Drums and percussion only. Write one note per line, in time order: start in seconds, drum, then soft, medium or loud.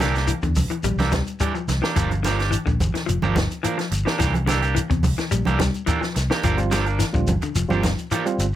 0.00 snare soft
0.00 closed hi-hat soft
0.00 high conga medium
0.00 shekere medium
0.15 snare soft
0.15 closed hi-hat soft
0.15 shekere soft
0.28 closed hi-hat medium
0.28 shekere medium
0.42 kick medium
0.42 closed hi-hat soft
0.42 shekere soft
0.56 kick medium
0.56 open hi-hat medium
0.56 high conga medium
0.56 shekere medium
0.70 closed hi-hat soft
0.70 shekere soft
0.83 closed hi-hat medium
0.83 high conga medium
0.83 shekere medium
0.99 snare soft
0.99 closed hi-hat soft
0.99 high conga medium
0.99 shekere soft
1.12 kick medium
1.12 snare medium
1.12 closed hi-hat soft
1.12 high conga medium
1.12 shekere medium
1.27 closed hi-hat soft
1.27 shekere soft
1.40 kick medium
1.40 closed hi-hat medium
1.40 shekere medium
1.55 shekere soft
1.68 snare soft
1.68 closed hi-hat soft
1.68 high conga medium
1.68 shekere medium
1.84 snare medium
1.84 shekere soft
1.96 kick medium
1.96 closed hi-hat medium
1.96 shekere medium
2.11 closed hi-hat soft
2.11 high conga medium
2.11 shekere soft
2.24 snare soft
2.24 closed hi-hat soft
2.24 high conga medium
2.24 shekere medium
2.39 snare soft
2.39 closed hi-hat soft
2.39 shekere soft
2.52 closed hi-hat medium
2.52 shekere medium
2.67 kick medium
2.67 shekere soft
2.80 kick medium
2.80 closed hi-hat soft
2.80 high conga medium
2.80 shekere medium
2.95 snare soft
2.95 closed hi-hat soft
2.95 shekere soft
3.09 closed hi-hat medium
3.09 shekere medium
3.22 high conga medium
3.22 shekere soft
3.36 kick medium
3.36 snare medium
3.36 closed hi-hat soft
3.36 high conga medium
3.36 shekere medium
3.51 closed hi-hat soft
3.51 shekere soft
3.64 closed hi-hat medium
3.64 shekere medium
3.79 snare soft
3.79 closed hi-hat soft
3.79 shekere soft
3.91 closed hi-hat medium
3.91 shekere medium
4.07 snare medium
4.07 shekere soft
4.19 kick medium
4.19 snare soft
4.19 closed hi-hat medium
4.19 shekere medium
4.34 closed hi-hat soft
4.34 high conga medium
4.34 shekere soft
4.47 snare soft
4.47 closed hi-hat medium
4.47 high conga medium
4.47 shekere medium
4.62 closed hi-hat soft
4.62 shekere soft
4.76 closed hi-hat medium
4.76 shekere medium
4.91 kick medium
4.91 closed hi-hat soft
4.91 shekere soft
5.03 kick medium
5.03 open hi-hat medium
5.03 high conga medium
5.03 shekere medium
5.18 snare soft
5.18 closed hi-hat soft
5.18 shekere soft
5.31 closed hi-hat medium
5.31 shekere medium
5.45 closed hi-hat soft
5.45 high conga medium
5.45 shekere soft
5.59 kick medium
5.59 snare medium
5.59 closed hi-hat soft
5.59 high conga medium
5.59 shekere medium
5.74 closed hi-hat soft
5.74 shekere soft
5.87 kick medium
5.87 closed hi-hat medium
5.87 shekere medium
6.03 snare soft
6.03 shekere soft
6.16 snare soft
6.16 closed hi-hat soft
6.16 shekere medium
6.31 snare medium
6.31 shekere soft
6.43 kick medium
6.43 closed hi-hat medium
6.43 shekere medium
6.58 closed hi-hat soft
6.58 shekere soft
6.71 snare soft
6.71 closed hi-hat soft
6.71 high conga medium
6.71 shekere medium
6.86 closed hi-hat soft
6.86 shekere soft
7.00 snare soft
7.00 closed hi-hat medium
7.00 shekere medium
7.14 kick medium
7.14 shekere soft
7.27 kick medium
7.27 closed hi-hat soft
7.27 high conga medium
7.27 shekere medium
7.42 closed hi-hat soft
7.42 shekere soft
7.55 closed hi-hat medium
7.55 shekere medium
7.70 high conga medium
7.70 shekere soft
7.83 kick medium
7.83 snare medium
7.83 closed hi-hat soft
7.83 high conga medium
7.83 shekere medium
7.98 closed hi-hat soft
7.98 shekere soft
8.11 closed hi-hat medium
8.11 shekere medium
8.26 closed hi-hat soft
8.26 shekere soft
8.39 closed hi-hat soft
8.39 shekere medium